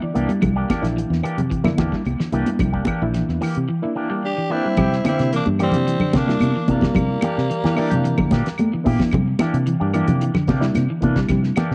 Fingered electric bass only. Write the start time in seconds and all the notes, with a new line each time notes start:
0.16 C2
0.43 C2
0.83 A#1
1.10 E2
1.38 C3
1.78 E2
2.06 C2
2.32 C2
2.60 C2
3.02 A#1
3.29 E2
3.57 C3
4.78 C3
5.20 C3
5.47 G2
5.75 C3
6.15 C3
6.42 C3
6.68 C3
6.96 C3
7.38 C3
7.65 E3
7.93 C3
8.31 A#2
8.47 muted fingered electric bass stroke
8.60 A3
8.74 muted fingered electric bass stroke
8.86 A#2
9.13 C3
9.54 C3
9.81 G2
10.08 C3
10.48 C3
10.77 C3
11.03 C3
11.29 C3
11.71 C3